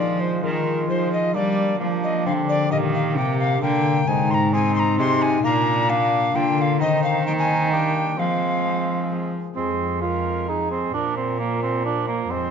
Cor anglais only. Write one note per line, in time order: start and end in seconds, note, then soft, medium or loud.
0.00 0.42 F4 medium
0.42 1.36 F4 medium
1.34 1.79 D4 medium
1.80 2.73 D4 medium
2.71 3.17 G4 medium
3.17 3.64 G4 medium
3.63 4.08 A#4 medium
4.09 4.55 D#4 medium
4.54 5.27 C4 medium
5.44 5.88 D4 medium
5.90 6.37 D4 medium
6.35 6.82 F4 medium
6.80 7.26 D#4 medium
7.26 7.74 D#4 medium
7.73 8.19 D4 medium
8.18 9.34 C4 medium
9.56 9.99 C4 medium
10.02 10.47 F4 medium
10.48 10.70 D#4 medium
10.71 10.93 C4 medium
10.94 11.16 D4 loud
11.17 11.39 C4 medium
11.39 11.62 A#3 medium
11.63 11.85 C4 medium
11.86 12.07 D4 medium
12.08 12.32 A#3 medium
12.31 12.51 C4 medium